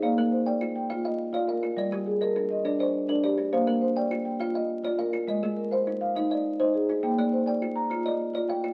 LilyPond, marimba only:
\new Staff \with { instrumentName = "Marimba" } { \time 12/8 \key bes \mixolydian \tempo 4. = 137 << { <aes' f''>4 c''4. g''4 ees''4 f''8 bes'4 | d''4 aes'4. ees''4 c''4 d''8 g'4 | f''4 c''4. g''4 ees''4. bes'4 | ees''4 bes'4. f''4 d''4 ees''8 aes'4 |
g''4 c''4. bes''4 ees''4. g''4 | } \\ { bes4 r8 d''4 r8 f'4 r8 f'4 r8 | g4 r8 bes'4 r8 d'4 r8 d'4 r8 | bes4 r8 d''4 r8 f'4 r8 f'4 r8 | aes4 r8 c''4 r8 ees'4 r8 ees'4 r8 |
bes4 r8 d''4 r8 f'4 r8 f'4 r8 | } >> }